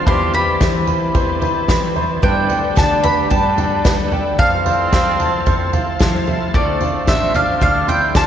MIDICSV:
0, 0, Header, 1, 8, 480
1, 0, Start_track
1, 0, Key_signature, 0, "major"
1, 0, Tempo, 539084
1, 59, Time_signature, 4, 2, 24, 8
1, 7361, End_track
2, 0, Start_track
2, 0, Title_t, "Mandolin"
2, 0, Program_c, 0, 25
2, 67, Note_on_c, 0, 84, 102
2, 303, Note_off_c, 0, 84, 0
2, 307, Note_on_c, 0, 83, 101
2, 752, Note_off_c, 0, 83, 0
2, 1989, Note_on_c, 0, 79, 81
2, 2474, Note_off_c, 0, 79, 0
2, 2478, Note_on_c, 0, 81, 91
2, 2699, Note_off_c, 0, 81, 0
2, 2703, Note_on_c, 0, 83, 98
2, 2940, Note_off_c, 0, 83, 0
2, 2944, Note_on_c, 0, 81, 84
2, 3632, Note_off_c, 0, 81, 0
2, 3907, Note_on_c, 0, 77, 103
2, 5550, Note_off_c, 0, 77, 0
2, 5831, Note_on_c, 0, 74, 83
2, 6305, Note_on_c, 0, 76, 87
2, 6321, Note_off_c, 0, 74, 0
2, 6526, Note_off_c, 0, 76, 0
2, 6548, Note_on_c, 0, 77, 86
2, 6777, Note_off_c, 0, 77, 0
2, 6787, Note_on_c, 0, 77, 95
2, 7021, Note_off_c, 0, 77, 0
2, 7024, Note_on_c, 0, 79, 86
2, 7266, Note_off_c, 0, 79, 0
2, 7269, Note_on_c, 0, 81, 99
2, 7361, Note_off_c, 0, 81, 0
2, 7361, End_track
3, 0, Start_track
3, 0, Title_t, "Upright piano"
3, 0, Program_c, 1, 0
3, 58, Note_on_c, 1, 83, 82
3, 546, Note_on_c, 1, 76, 76
3, 770, Note_off_c, 1, 83, 0
3, 783, Note_on_c, 1, 83, 83
3, 1021, Note_on_c, 1, 72, 85
3, 1251, Note_off_c, 1, 76, 0
3, 1264, Note_on_c, 1, 76, 75
3, 1491, Note_off_c, 1, 83, 0
3, 1504, Note_on_c, 1, 83, 74
3, 1731, Note_off_c, 1, 72, 0
3, 1745, Note_on_c, 1, 72, 82
3, 1985, Note_on_c, 1, 71, 91
3, 1986, Note_off_c, 1, 72, 0
3, 1986, Note_off_c, 1, 83, 0
3, 1987, Note_off_c, 1, 76, 0
3, 2225, Note_on_c, 1, 79, 75
3, 2466, Note_on_c, 1, 81, 78
3, 2694, Note_off_c, 1, 71, 0
3, 2707, Note_on_c, 1, 71, 91
3, 2936, Note_off_c, 1, 79, 0
3, 2949, Note_on_c, 1, 79, 74
3, 3179, Note_off_c, 1, 81, 0
3, 3192, Note_on_c, 1, 81, 75
3, 3414, Note_off_c, 1, 71, 0
3, 3428, Note_on_c, 1, 71, 88
3, 3657, Note_off_c, 1, 79, 0
3, 3671, Note_on_c, 1, 79, 75
3, 3899, Note_off_c, 1, 81, 0
3, 3910, Note_off_c, 1, 71, 0
3, 3911, Note_off_c, 1, 79, 0
3, 3913, Note_on_c, 1, 81, 86
3, 4151, Note_on_c, 1, 72, 78
3, 4394, Note_on_c, 1, 77, 82
3, 4615, Note_off_c, 1, 81, 0
3, 4628, Note_on_c, 1, 81, 85
3, 4854, Note_off_c, 1, 72, 0
3, 4868, Note_on_c, 1, 72, 82
3, 5092, Note_off_c, 1, 77, 0
3, 5105, Note_on_c, 1, 77, 82
3, 5335, Note_off_c, 1, 81, 0
3, 5349, Note_on_c, 1, 81, 76
3, 5590, Note_on_c, 1, 76, 82
3, 5825, Note_off_c, 1, 77, 0
3, 5826, Note_off_c, 1, 72, 0
3, 5827, Note_off_c, 1, 81, 0
3, 5828, Note_off_c, 1, 76, 0
3, 5829, Note_on_c, 1, 74, 93
3, 6068, Note_on_c, 1, 77, 68
3, 6305, Note_on_c, 1, 84, 78
3, 6528, Note_off_c, 1, 74, 0
3, 6541, Note_on_c, 1, 74, 90
3, 6763, Note_off_c, 1, 77, 0
3, 6776, Note_on_c, 1, 77, 78
3, 7001, Note_off_c, 1, 84, 0
3, 7014, Note_on_c, 1, 84, 85
3, 7240, Note_off_c, 1, 74, 0
3, 7253, Note_on_c, 1, 74, 91
3, 7361, Note_off_c, 1, 74, 0
3, 7361, Note_off_c, 1, 77, 0
3, 7361, Note_off_c, 1, 84, 0
3, 7361, End_track
4, 0, Start_track
4, 0, Title_t, "Trumpet"
4, 0, Program_c, 2, 56
4, 61, Note_on_c, 2, 67, 99
4, 284, Note_off_c, 2, 67, 0
4, 311, Note_on_c, 2, 67, 94
4, 754, Note_off_c, 2, 67, 0
4, 1981, Note_on_c, 2, 62, 81
4, 2432, Note_off_c, 2, 62, 0
4, 2461, Note_on_c, 2, 62, 84
4, 2688, Note_off_c, 2, 62, 0
4, 2703, Note_on_c, 2, 67, 82
4, 2930, Note_off_c, 2, 67, 0
4, 2941, Note_on_c, 2, 62, 82
4, 3631, Note_off_c, 2, 62, 0
4, 3899, Note_on_c, 2, 60, 106
4, 5546, Note_off_c, 2, 60, 0
4, 5826, Note_on_c, 2, 57, 76
4, 6270, Note_off_c, 2, 57, 0
4, 6301, Note_on_c, 2, 60, 78
4, 6524, Note_off_c, 2, 60, 0
4, 6545, Note_on_c, 2, 62, 78
4, 6766, Note_off_c, 2, 62, 0
4, 6788, Note_on_c, 2, 62, 85
4, 7006, Note_off_c, 2, 62, 0
4, 7030, Note_on_c, 2, 64, 82
4, 7246, Note_off_c, 2, 64, 0
4, 7261, Note_on_c, 2, 65, 92
4, 7361, Note_off_c, 2, 65, 0
4, 7361, End_track
5, 0, Start_track
5, 0, Title_t, "Steel-string acoustic guitar"
5, 0, Program_c, 3, 25
5, 59, Note_on_c, 3, 52, 82
5, 64, Note_on_c, 3, 55, 92
5, 66, Note_on_c, 3, 60, 91
5, 68, Note_on_c, 3, 64, 91
5, 76, Note_on_c, 3, 71, 100
5, 294, Note_off_c, 3, 71, 0
5, 300, Note_off_c, 3, 52, 0
5, 302, Note_off_c, 3, 55, 0
5, 304, Note_off_c, 3, 60, 0
5, 304, Note_off_c, 3, 64, 0
5, 305, Note_on_c, 3, 71, 54
5, 314, Note_on_c, 3, 64, 50
5, 325, Note_on_c, 3, 60, 47
5, 534, Note_off_c, 3, 60, 0
5, 538, Note_off_c, 3, 64, 0
5, 542, Note_on_c, 3, 52, 80
5, 543, Note_off_c, 3, 71, 0
5, 543, Note_on_c, 3, 55, 88
5, 545, Note_on_c, 3, 60, 87
5, 548, Note_on_c, 3, 64, 91
5, 552, Note_on_c, 3, 71, 84
5, 1012, Note_off_c, 3, 60, 0
5, 1015, Note_off_c, 3, 55, 0
5, 1017, Note_off_c, 3, 64, 0
5, 1019, Note_on_c, 3, 55, 68
5, 1023, Note_on_c, 3, 60, 73
5, 1024, Note_off_c, 3, 52, 0
5, 1028, Note_on_c, 3, 64, 73
5, 1030, Note_off_c, 3, 71, 0
5, 1033, Note_on_c, 3, 71, 75
5, 1248, Note_off_c, 3, 71, 0
5, 1259, Note_off_c, 3, 64, 0
5, 1259, Note_on_c, 3, 71, 67
5, 1262, Note_off_c, 3, 55, 0
5, 1264, Note_off_c, 3, 60, 0
5, 1270, Note_on_c, 3, 64, 55
5, 1278, Note_on_c, 3, 60, 49
5, 1493, Note_off_c, 3, 60, 0
5, 1495, Note_off_c, 3, 64, 0
5, 1498, Note_off_c, 3, 71, 0
5, 1499, Note_on_c, 3, 55, 82
5, 1500, Note_on_c, 3, 52, 88
5, 1503, Note_on_c, 3, 60, 83
5, 1506, Note_on_c, 3, 64, 97
5, 1509, Note_on_c, 3, 71, 94
5, 1722, Note_off_c, 3, 71, 0
5, 1732, Note_off_c, 3, 64, 0
5, 1733, Note_on_c, 3, 71, 59
5, 1739, Note_off_c, 3, 60, 0
5, 1743, Note_off_c, 3, 52, 0
5, 1743, Note_off_c, 3, 55, 0
5, 1743, Note_on_c, 3, 64, 57
5, 1750, Note_on_c, 3, 60, 46
5, 1977, Note_on_c, 3, 43, 76
5, 1978, Note_on_c, 3, 50, 83
5, 1980, Note_off_c, 3, 71, 0
5, 1982, Note_on_c, 3, 55, 85
5, 1984, Note_off_c, 3, 60, 0
5, 1984, Note_off_c, 3, 64, 0
5, 1987, Note_on_c, 3, 62, 90
5, 1987, Note_on_c, 3, 69, 93
5, 1988, Note_on_c, 3, 59, 93
5, 2201, Note_off_c, 3, 69, 0
5, 2207, Note_off_c, 3, 62, 0
5, 2212, Note_on_c, 3, 69, 59
5, 2215, Note_off_c, 3, 59, 0
5, 2218, Note_on_c, 3, 62, 48
5, 2219, Note_off_c, 3, 55, 0
5, 2223, Note_off_c, 3, 43, 0
5, 2224, Note_off_c, 3, 50, 0
5, 2226, Note_on_c, 3, 59, 48
5, 2230, Note_on_c, 3, 55, 45
5, 2445, Note_off_c, 3, 55, 0
5, 2446, Note_off_c, 3, 59, 0
5, 2450, Note_off_c, 3, 62, 0
5, 2451, Note_on_c, 3, 43, 84
5, 2455, Note_off_c, 3, 69, 0
5, 2455, Note_on_c, 3, 50, 83
5, 2456, Note_on_c, 3, 55, 85
5, 2456, Note_on_c, 3, 59, 79
5, 2461, Note_on_c, 3, 62, 84
5, 2465, Note_on_c, 3, 69, 87
5, 2923, Note_off_c, 3, 55, 0
5, 2932, Note_off_c, 3, 59, 0
5, 2934, Note_on_c, 3, 55, 65
5, 2935, Note_off_c, 3, 62, 0
5, 2941, Note_off_c, 3, 43, 0
5, 2943, Note_off_c, 3, 50, 0
5, 2943, Note_on_c, 3, 59, 68
5, 2946, Note_on_c, 3, 62, 64
5, 2947, Note_off_c, 3, 69, 0
5, 2951, Note_on_c, 3, 69, 68
5, 3170, Note_off_c, 3, 69, 0
5, 3179, Note_off_c, 3, 62, 0
5, 3180, Note_on_c, 3, 69, 54
5, 3182, Note_off_c, 3, 55, 0
5, 3183, Note_off_c, 3, 59, 0
5, 3190, Note_on_c, 3, 62, 58
5, 3194, Note_on_c, 3, 59, 47
5, 3197, Note_on_c, 3, 55, 43
5, 3411, Note_off_c, 3, 55, 0
5, 3413, Note_off_c, 3, 59, 0
5, 3417, Note_off_c, 3, 62, 0
5, 3419, Note_off_c, 3, 69, 0
5, 3419, Note_on_c, 3, 43, 77
5, 3422, Note_on_c, 3, 55, 77
5, 3423, Note_on_c, 3, 50, 87
5, 3423, Note_on_c, 3, 59, 79
5, 3427, Note_on_c, 3, 62, 83
5, 3430, Note_on_c, 3, 69, 85
5, 3656, Note_off_c, 3, 69, 0
5, 3663, Note_off_c, 3, 62, 0
5, 3665, Note_off_c, 3, 43, 0
5, 3665, Note_off_c, 3, 59, 0
5, 3667, Note_off_c, 3, 50, 0
5, 3667, Note_off_c, 3, 55, 0
5, 3667, Note_on_c, 3, 69, 62
5, 3674, Note_on_c, 3, 62, 59
5, 3675, Note_on_c, 3, 59, 51
5, 3681, Note_on_c, 3, 55, 48
5, 3909, Note_off_c, 3, 69, 0
5, 3910, Note_off_c, 3, 55, 0
5, 3912, Note_off_c, 3, 62, 0
5, 3913, Note_off_c, 3, 59, 0
5, 3913, Note_on_c, 3, 53, 77
5, 3916, Note_on_c, 3, 60, 90
5, 3923, Note_on_c, 3, 64, 92
5, 3924, Note_on_c, 3, 69, 87
5, 4132, Note_off_c, 3, 69, 0
5, 4143, Note_on_c, 3, 69, 53
5, 4146, Note_off_c, 3, 64, 0
5, 4151, Note_off_c, 3, 60, 0
5, 4152, Note_off_c, 3, 53, 0
5, 4156, Note_on_c, 3, 64, 46
5, 4161, Note_on_c, 3, 60, 47
5, 4386, Note_off_c, 3, 60, 0
5, 4387, Note_off_c, 3, 69, 0
5, 4394, Note_off_c, 3, 64, 0
5, 4394, Note_on_c, 3, 53, 80
5, 4397, Note_on_c, 3, 60, 86
5, 4403, Note_on_c, 3, 69, 91
5, 4867, Note_off_c, 3, 53, 0
5, 4870, Note_off_c, 3, 60, 0
5, 4870, Note_on_c, 3, 53, 68
5, 4874, Note_on_c, 3, 60, 75
5, 4879, Note_on_c, 3, 64, 79
5, 4880, Note_off_c, 3, 69, 0
5, 4884, Note_on_c, 3, 69, 77
5, 5099, Note_off_c, 3, 69, 0
5, 5110, Note_off_c, 3, 53, 0
5, 5110, Note_off_c, 3, 64, 0
5, 5110, Note_on_c, 3, 69, 65
5, 5111, Note_off_c, 3, 60, 0
5, 5121, Note_on_c, 3, 64, 55
5, 5125, Note_on_c, 3, 60, 52
5, 5336, Note_off_c, 3, 60, 0
5, 5342, Note_off_c, 3, 64, 0
5, 5342, Note_on_c, 3, 53, 79
5, 5344, Note_off_c, 3, 69, 0
5, 5347, Note_on_c, 3, 60, 91
5, 5353, Note_on_c, 3, 64, 100
5, 5354, Note_on_c, 3, 69, 104
5, 5573, Note_off_c, 3, 69, 0
5, 5584, Note_on_c, 3, 69, 65
5, 5585, Note_off_c, 3, 53, 0
5, 5586, Note_off_c, 3, 64, 0
5, 5587, Note_off_c, 3, 60, 0
5, 5597, Note_on_c, 3, 64, 59
5, 5599, Note_on_c, 3, 60, 49
5, 5823, Note_off_c, 3, 60, 0
5, 5825, Note_off_c, 3, 69, 0
5, 5830, Note_on_c, 3, 53, 85
5, 5831, Note_off_c, 3, 64, 0
5, 5831, Note_on_c, 3, 50, 81
5, 5834, Note_on_c, 3, 60, 92
5, 5835, Note_on_c, 3, 62, 91
5, 5840, Note_on_c, 3, 69, 94
5, 6051, Note_off_c, 3, 69, 0
5, 6061, Note_off_c, 3, 62, 0
5, 6062, Note_on_c, 3, 69, 56
5, 6067, Note_off_c, 3, 53, 0
5, 6068, Note_off_c, 3, 50, 0
5, 6069, Note_off_c, 3, 60, 0
5, 6071, Note_on_c, 3, 62, 50
5, 6078, Note_on_c, 3, 60, 47
5, 6296, Note_off_c, 3, 60, 0
5, 6299, Note_off_c, 3, 62, 0
5, 6299, Note_on_c, 3, 50, 78
5, 6300, Note_off_c, 3, 69, 0
5, 6302, Note_on_c, 3, 53, 87
5, 6306, Note_on_c, 3, 60, 80
5, 6310, Note_on_c, 3, 62, 93
5, 6310, Note_on_c, 3, 69, 93
5, 6767, Note_off_c, 3, 53, 0
5, 6777, Note_on_c, 3, 53, 74
5, 6779, Note_off_c, 3, 50, 0
5, 6779, Note_off_c, 3, 62, 0
5, 6780, Note_off_c, 3, 60, 0
5, 6781, Note_off_c, 3, 69, 0
5, 6783, Note_on_c, 3, 60, 66
5, 6790, Note_on_c, 3, 62, 67
5, 6792, Note_on_c, 3, 69, 69
5, 7000, Note_off_c, 3, 69, 0
5, 7009, Note_off_c, 3, 62, 0
5, 7011, Note_on_c, 3, 69, 64
5, 7017, Note_off_c, 3, 60, 0
5, 7018, Note_off_c, 3, 53, 0
5, 7019, Note_on_c, 3, 62, 52
5, 7028, Note_on_c, 3, 60, 50
5, 7247, Note_off_c, 3, 60, 0
5, 7250, Note_off_c, 3, 62, 0
5, 7251, Note_off_c, 3, 69, 0
5, 7254, Note_on_c, 3, 50, 89
5, 7256, Note_on_c, 3, 53, 93
5, 7258, Note_on_c, 3, 60, 90
5, 7261, Note_on_c, 3, 62, 84
5, 7262, Note_on_c, 3, 69, 93
5, 7361, Note_off_c, 3, 50, 0
5, 7361, Note_off_c, 3, 53, 0
5, 7361, Note_off_c, 3, 60, 0
5, 7361, Note_off_c, 3, 62, 0
5, 7361, Note_off_c, 3, 69, 0
5, 7361, End_track
6, 0, Start_track
6, 0, Title_t, "Tonewheel organ"
6, 0, Program_c, 4, 16
6, 60, Note_on_c, 4, 60, 61
6, 62, Note_on_c, 4, 62, 75
6, 66, Note_on_c, 4, 52, 70
6, 1968, Note_off_c, 4, 60, 0
6, 1969, Note_off_c, 4, 62, 0
6, 1972, Note_off_c, 4, 52, 0
6, 1985, Note_on_c, 4, 67, 76
6, 1986, Note_on_c, 4, 57, 64
6, 1991, Note_on_c, 4, 59, 61
6, 3891, Note_off_c, 4, 67, 0
6, 3892, Note_off_c, 4, 57, 0
6, 3894, Note_off_c, 4, 59, 0
6, 3907, Note_on_c, 4, 69, 75
6, 3909, Note_on_c, 4, 65, 57
6, 3912, Note_on_c, 4, 53, 63
6, 5806, Note_off_c, 4, 69, 0
6, 5807, Note_off_c, 4, 65, 0
6, 5808, Note_off_c, 4, 53, 0
6, 5824, Note_on_c, 4, 50, 74
6, 5829, Note_on_c, 4, 60, 60
6, 5830, Note_on_c, 4, 65, 75
6, 7361, Note_off_c, 4, 50, 0
6, 7361, Note_off_c, 4, 60, 0
6, 7361, Note_off_c, 4, 65, 0
6, 7361, End_track
7, 0, Start_track
7, 0, Title_t, "Fingered electric bass"
7, 0, Program_c, 5, 33
7, 61, Note_on_c, 5, 40, 114
7, 490, Note_off_c, 5, 40, 0
7, 543, Note_on_c, 5, 52, 93
7, 972, Note_off_c, 5, 52, 0
7, 1021, Note_on_c, 5, 40, 95
7, 1237, Note_off_c, 5, 40, 0
7, 1504, Note_on_c, 5, 52, 95
7, 1934, Note_off_c, 5, 52, 0
7, 1986, Note_on_c, 5, 43, 104
7, 2201, Note_off_c, 5, 43, 0
7, 2467, Note_on_c, 5, 38, 86
7, 2897, Note_off_c, 5, 38, 0
7, 2951, Note_on_c, 5, 43, 87
7, 3380, Note_off_c, 5, 43, 0
7, 3427, Note_on_c, 5, 36, 88
7, 3857, Note_off_c, 5, 36, 0
7, 3908, Note_on_c, 5, 41, 108
7, 4337, Note_off_c, 5, 41, 0
7, 4386, Note_on_c, 5, 53, 94
7, 4816, Note_off_c, 5, 53, 0
7, 4871, Note_on_c, 5, 41, 94
7, 5084, Note_off_c, 5, 41, 0
7, 5345, Note_on_c, 5, 53, 106
7, 5773, Note_off_c, 5, 53, 0
7, 5827, Note_on_c, 5, 38, 101
7, 6040, Note_off_c, 5, 38, 0
7, 6305, Note_on_c, 5, 33, 93
7, 6730, Note_off_c, 5, 33, 0
7, 6781, Note_on_c, 5, 38, 99
7, 7206, Note_off_c, 5, 38, 0
7, 7260, Note_on_c, 5, 50, 99
7, 7361, Note_off_c, 5, 50, 0
7, 7361, End_track
8, 0, Start_track
8, 0, Title_t, "Drums"
8, 57, Note_on_c, 9, 43, 89
8, 60, Note_on_c, 9, 36, 117
8, 63, Note_on_c, 9, 54, 27
8, 146, Note_off_c, 9, 43, 0
8, 149, Note_off_c, 9, 36, 0
8, 152, Note_off_c, 9, 54, 0
8, 299, Note_on_c, 9, 43, 77
8, 299, Note_on_c, 9, 54, 70
8, 388, Note_off_c, 9, 43, 0
8, 388, Note_off_c, 9, 54, 0
8, 538, Note_on_c, 9, 54, 79
8, 540, Note_on_c, 9, 38, 107
8, 540, Note_on_c, 9, 43, 87
8, 543, Note_on_c, 9, 36, 121
8, 627, Note_off_c, 9, 54, 0
8, 629, Note_off_c, 9, 38, 0
8, 629, Note_off_c, 9, 43, 0
8, 632, Note_off_c, 9, 36, 0
8, 777, Note_on_c, 9, 43, 91
8, 778, Note_on_c, 9, 54, 71
8, 866, Note_off_c, 9, 43, 0
8, 867, Note_off_c, 9, 54, 0
8, 1020, Note_on_c, 9, 43, 82
8, 1021, Note_on_c, 9, 54, 70
8, 1023, Note_on_c, 9, 36, 109
8, 1109, Note_off_c, 9, 43, 0
8, 1110, Note_off_c, 9, 54, 0
8, 1112, Note_off_c, 9, 36, 0
8, 1261, Note_on_c, 9, 43, 92
8, 1264, Note_on_c, 9, 54, 70
8, 1350, Note_off_c, 9, 43, 0
8, 1353, Note_off_c, 9, 54, 0
8, 1498, Note_on_c, 9, 38, 117
8, 1498, Note_on_c, 9, 43, 83
8, 1504, Note_on_c, 9, 36, 108
8, 1506, Note_on_c, 9, 54, 91
8, 1587, Note_off_c, 9, 38, 0
8, 1587, Note_off_c, 9, 43, 0
8, 1593, Note_off_c, 9, 36, 0
8, 1595, Note_off_c, 9, 54, 0
8, 1744, Note_on_c, 9, 43, 86
8, 1745, Note_on_c, 9, 54, 25
8, 1833, Note_off_c, 9, 43, 0
8, 1834, Note_off_c, 9, 54, 0
8, 1982, Note_on_c, 9, 43, 85
8, 1986, Note_on_c, 9, 36, 119
8, 2072, Note_off_c, 9, 43, 0
8, 2075, Note_off_c, 9, 36, 0
8, 2221, Note_on_c, 9, 54, 70
8, 2224, Note_on_c, 9, 43, 74
8, 2310, Note_off_c, 9, 54, 0
8, 2313, Note_off_c, 9, 43, 0
8, 2460, Note_on_c, 9, 54, 87
8, 2467, Note_on_c, 9, 38, 121
8, 2467, Note_on_c, 9, 43, 89
8, 2469, Note_on_c, 9, 36, 125
8, 2549, Note_off_c, 9, 54, 0
8, 2556, Note_off_c, 9, 38, 0
8, 2556, Note_off_c, 9, 43, 0
8, 2558, Note_off_c, 9, 36, 0
8, 2702, Note_on_c, 9, 54, 77
8, 2709, Note_on_c, 9, 43, 92
8, 2791, Note_off_c, 9, 54, 0
8, 2798, Note_off_c, 9, 43, 0
8, 2940, Note_on_c, 9, 54, 72
8, 2950, Note_on_c, 9, 36, 113
8, 2950, Note_on_c, 9, 43, 90
8, 3029, Note_off_c, 9, 54, 0
8, 3039, Note_off_c, 9, 36, 0
8, 3039, Note_off_c, 9, 43, 0
8, 3186, Note_on_c, 9, 43, 93
8, 3188, Note_on_c, 9, 54, 76
8, 3275, Note_off_c, 9, 43, 0
8, 3277, Note_off_c, 9, 54, 0
8, 3426, Note_on_c, 9, 54, 98
8, 3427, Note_on_c, 9, 38, 113
8, 3427, Note_on_c, 9, 43, 93
8, 3429, Note_on_c, 9, 36, 114
8, 3515, Note_off_c, 9, 54, 0
8, 3516, Note_off_c, 9, 38, 0
8, 3516, Note_off_c, 9, 43, 0
8, 3518, Note_off_c, 9, 36, 0
8, 3667, Note_on_c, 9, 43, 93
8, 3670, Note_on_c, 9, 54, 27
8, 3756, Note_off_c, 9, 43, 0
8, 3759, Note_off_c, 9, 54, 0
8, 3904, Note_on_c, 9, 43, 92
8, 3909, Note_on_c, 9, 36, 122
8, 3993, Note_off_c, 9, 43, 0
8, 3998, Note_off_c, 9, 36, 0
8, 4147, Note_on_c, 9, 43, 76
8, 4147, Note_on_c, 9, 54, 77
8, 4236, Note_off_c, 9, 43, 0
8, 4236, Note_off_c, 9, 54, 0
8, 4385, Note_on_c, 9, 38, 124
8, 4385, Note_on_c, 9, 43, 91
8, 4386, Note_on_c, 9, 54, 96
8, 4389, Note_on_c, 9, 36, 117
8, 4474, Note_off_c, 9, 38, 0
8, 4474, Note_off_c, 9, 43, 0
8, 4475, Note_off_c, 9, 54, 0
8, 4478, Note_off_c, 9, 36, 0
8, 4626, Note_on_c, 9, 54, 75
8, 4630, Note_on_c, 9, 43, 97
8, 4715, Note_off_c, 9, 54, 0
8, 4719, Note_off_c, 9, 43, 0
8, 4863, Note_on_c, 9, 54, 72
8, 4867, Note_on_c, 9, 43, 88
8, 4869, Note_on_c, 9, 36, 109
8, 4952, Note_off_c, 9, 54, 0
8, 4956, Note_off_c, 9, 43, 0
8, 4958, Note_off_c, 9, 36, 0
8, 5103, Note_on_c, 9, 54, 81
8, 5105, Note_on_c, 9, 43, 101
8, 5192, Note_off_c, 9, 54, 0
8, 5194, Note_off_c, 9, 43, 0
8, 5337, Note_on_c, 9, 54, 94
8, 5346, Note_on_c, 9, 38, 125
8, 5346, Note_on_c, 9, 43, 93
8, 5347, Note_on_c, 9, 36, 113
8, 5427, Note_off_c, 9, 54, 0
8, 5435, Note_off_c, 9, 38, 0
8, 5435, Note_off_c, 9, 43, 0
8, 5436, Note_off_c, 9, 36, 0
8, 5581, Note_on_c, 9, 54, 28
8, 5586, Note_on_c, 9, 43, 95
8, 5670, Note_off_c, 9, 54, 0
8, 5675, Note_off_c, 9, 43, 0
8, 5823, Note_on_c, 9, 43, 90
8, 5826, Note_on_c, 9, 36, 109
8, 5912, Note_off_c, 9, 43, 0
8, 5915, Note_off_c, 9, 36, 0
8, 6060, Note_on_c, 9, 54, 67
8, 6061, Note_on_c, 9, 43, 74
8, 6149, Note_off_c, 9, 54, 0
8, 6150, Note_off_c, 9, 43, 0
8, 6299, Note_on_c, 9, 38, 119
8, 6299, Note_on_c, 9, 43, 89
8, 6299, Note_on_c, 9, 54, 97
8, 6304, Note_on_c, 9, 36, 116
8, 6388, Note_off_c, 9, 38, 0
8, 6388, Note_off_c, 9, 43, 0
8, 6388, Note_off_c, 9, 54, 0
8, 6393, Note_off_c, 9, 36, 0
8, 6539, Note_on_c, 9, 54, 71
8, 6542, Note_on_c, 9, 43, 96
8, 6628, Note_off_c, 9, 54, 0
8, 6631, Note_off_c, 9, 43, 0
8, 6777, Note_on_c, 9, 54, 75
8, 6781, Note_on_c, 9, 36, 111
8, 6783, Note_on_c, 9, 43, 85
8, 6866, Note_off_c, 9, 54, 0
8, 6870, Note_off_c, 9, 36, 0
8, 6872, Note_off_c, 9, 43, 0
8, 7019, Note_on_c, 9, 43, 96
8, 7020, Note_on_c, 9, 54, 80
8, 7108, Note_off_c, 9, 43, 0
8, 7109, Note_off_c, 9, 54, 0
8, 7255, Note_on_c, 9, 38, 107
8, 7255, Note_on_c, 9, 43, 96
8, 7255, Note_on_c, 9, 54, 92
8, 7257, Note_on_c, 9, 36, 125
8, 7344, Note_off_c, 9, 38, 0
8, 7344, Note_off_c, 9, 43, 0
8, 7344, Note_off_c, 9, 54, 0
8, 7347, Note_off_c, 9, 36, 0
8, 7361, End_track
0, 0, End_of_file